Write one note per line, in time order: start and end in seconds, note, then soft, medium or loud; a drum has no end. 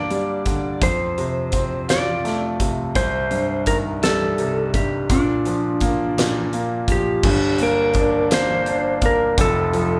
0.00 0.78 G2 medium
0.00 0.42 D3 soft
0.00 0.78 A#3 medium
0.00 0.78 D4 medium
0.00 0.86 D5 medium
0.10 0.80 G3 soft
0.10 closed hi-hat soft
0.46 0.81 D3 soft
0.46 kick medium
0.46 closed hi-hat medium
0.82 2.92 F2 medium
0.82 1.85 C5 medium
0.82 kick medium
0.82 closed hi-hat medium
1.18 2.56 C3 soft
1.18 closed hi-hat soft
1.52 2.92 C4 medium
1.52 kick medium
1.52 closed hi-hat medium
1.88 2.92 F4 medium
1.88 2.57 D5 medium
1.88 snare loud
1.88 closed hi-hat medium
2.25 2.94 A3 soft
2.25 snare soft
2.25 closed hi-hat soft
2.60 2.95 C3 soft
2.60 kick medium
2.60 closed hi-hat medium
2.95 5.06 C2 medium
2.95 3.69 C5 loud
2.95 kick medium
2.95 closed hi-hat medium
3.31 4.70 G2 soft
3.31 closed hi-hat soft
3.66 5.06 D#3 medium
3.66 3.77 A#4 medium
3.66 kick medium
3.66 closed hi-hat medium
4.03 5.07 G3 medium
4.03 4.70 A4 medium
4.03 snare medium
4.03 closed hi-hat medium
4.38 5.08 C3 soft
4.38 closed hi-hat soft
4.74 5.09 G2 soft
4.74 5.11 G4 medium
4.74 kick medium
4.74 closed hi-hat medium
5.10 6.16 A#2 medium
5.10 6.49 D4 medium
5.10 kick medium
5.10 closed hi-hat medium
5.45 6.85 F3 soft
5.45 closed hi-hat soft
5.81 6.52 A#3 medium
5.81 kick medium
5.81 closed hi-hat medium
6.18 7.21 A#2 medium
6.18 snare loud
6.18 closed hi-hat medium
6.53 7.22 A#3 medium
6.53 closed hi-hat soft
6.88 7.24 F3 soft
6.88 7.63 G4 medium
6.88 kick medium
6.88 closed hi-hat medium
7.23 9.34 G1 medium
7.23 9.34 G2 medium
7.23 kick loud
7.23 crash loud
7.58 8.31 A#3 medium
7.58 closed hi-hat medium
7.63 8.28 A#4 loud
7.94 8.66 D4 medium
7.94 kick medium
7.94 closed hi-hat medium
8.31 9.01 A#3 medium
8.31 9.06 C5 medium
8.31 snare loud
8.31 closed hi-hat medium
8.66 9.36 D4 medium
8.66 closed hi-hat medium
9.02 9.37 A#3 medium
9.02 kick medium
9.02 closed hi-hat medium
9.06 9.40 A#4 medium
9.38 10.00 F1 medium
9.38 10.00 F2 medium
9.38 10.00 A4 loud
9.38 kick loud
9.38 closed hi-hat medium
9.73 10.00 F3 medium
9.73 closed hi-hat soft